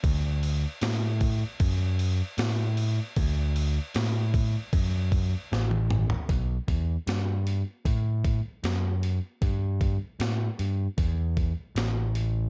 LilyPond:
<<
  \new Staff \with { instrumentName = "Picked electric bass" } { \clef bass \time 4/4 \key d \major \tempo 4 = 77 d,4 a,4 fis,4 a,4 | d,4 a,4 fis,4 a,,4 | b,,8 e,8 g,4 a,4 fis,4 | g,4 a,8 g,8 e,4 a,,4 | }
  \new DrumStaff \with { instrumentName = "Drums" } \drummode { \time 4/4 <cymc bd>8 cymc8 <cymc sn>8 <cymc bd>8 <cymc bd>8 cymc8 <cymc sn>8 cymc8 | <cymc bd>8 cymc8 <cymc sn>8 <cymc bd>8 <cymc bd>8 <cymc bd>8 sn16 tommh16 toml16 tomfh16 | <hho bd>8 <hho bd>8 <hho sn>8 hho8 <hho bd>8 <hho bd>8 <hho sn>8 hho8 | <hho bd>8 <hho bd>8 <hho sn>8 hho8 <hho bd>8 <hho bd>8 <hho sn>8 hho8 | }
>>